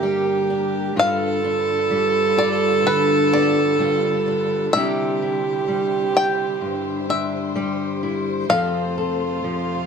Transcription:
Already playing: steel-string acoustic guitar G2 D3 A#3 D4, string section D3 A#3 G4 A#4, cello G4, five-string banjo E5
0.03 steel-string acoustic guitar G3 G4
0.50 steel-string acoustic guitar D4
0.95 steel-string acoustic guitar G2 F4, string section D3 G3 F4 B4, cello A4
0.99 five-string banjo F5
1.44 steel-string acoustic guitar D4
1.91 steel-string acoustic guitar G3
2.37 steel-string acoustic guitar F4, five-string banjo D5
2.84 steel-string acoustic guitar D3, five-string banjo B4
3.33 steel-string acoustic guitar B3, five-string banjo D5
3.79 steel-string acoustic guitar G3 F4
4.28 steel-string acoustic guitar D4
4.73 steel-string acoustic guitar C3 G3 D4 E4 G4, string section E4 C5, cello G4, five-string banjo E5
5.22 steel-string acoustic guitar E4
5.68 steel-string acoustic guitar G3
6.14 steel-string acoustic guitar G4, five-string banjo G5
6.61 steel-string acoustic guitar G2
7.09 steel-string acoustic guitar D4, five-string banjo E5
7.55 steel-string acoustic guitar G3 G4
8.03 steel-string acoustic guitar E4
8.49 steel-string acoustic guitar F2 F3 C4 A4, string section C3 A3 F4, cello F4, five-string banjo F5
8.98 steel-string acoustic guitar A4
9.44 steel-string acoustic guitar F3

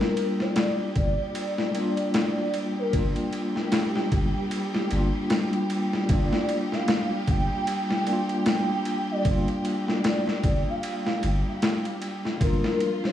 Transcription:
Already playing: tine electric piano G3 A#3 D4 F4, string section G3 G4, soft synth lead A#4
0.01 snare
0.17 ride
0.40 soft synth lead D5, snare
0.56 snare, ride
0.96 sub bass G1, soft synth lead D5, kick, ride
1.35 ride
1.58 soft synth lead D5, snare
1.72 tine electric piano G3 A#3, ride
1.77 tine electric piano D4 F4
1.97 ride
2.14 soft synth lead D5, snare, ride
2.54 ride
2.79 soft synth lead A#4
2.90 sub bass G1, tine electric piano G3 A#3, kick, ride
2.96 tine electric piano D4 F4
3.16 ride
3.33 ride
3.56 snare
3.72 soft synth lead G4, snare, ride
3.96 snare
4.12 sub bass G1, kick, ride
4.36 soft synth lead G4
4.51 ride
4.74 snare
4.87 tine electric piano G3 A#3, ride
4.92 sub bass G1, tine electric piano D4
4.96 tine electric piano F4
5.30 snare, ride
5.53 ride
5.70 ride
5.93 snare
6.06 sub bass G1, tine electric piano G3 A#3, kick, ride
6.11 tine electric piano D4 F4, soft synth lead D5
6.33 snare
6.49 ride
6.72 soft synth lead F5, snare
6.88 snare, ride
7.28 sub bass G1, soft synth lead G5, kick, ride
7.67 ride
7.91 soft synth lead G5, snare
8.04 tine electric piano G3 A#3, ride
8.10 tine electric piano D4 F4
8.29 ride
8.46 soft synth lead G5, snare, ride
8.85 ride
9.11 soft synth lead D5
9.22 sub bass G1, tine electric piano G3 A#3, kick, ride
9.28 tine electric piano D4 F4
9.48 ride
9.65 ride
9.88 snare
10.04 soft synth lead D5, snare, ride
10.28 snare
10.44 sub bass G1, kick, ride
10.69 soft synth lead F5
10.83 ride
11.07 snare
11.23 sub bass G1, ride
11.62 snare, ride
11.85 ride
12.02 ride
12.25 snare
12.38 sub bass G1, string section F3 F4, tine electric piano G3 A#3, kick, ride
12.43 tine electric piano D4, soft synth lead A#4
12.47 tine electric piano F4
12.64 snare
12.80 ride
13.04 soft synth lead D5, snare

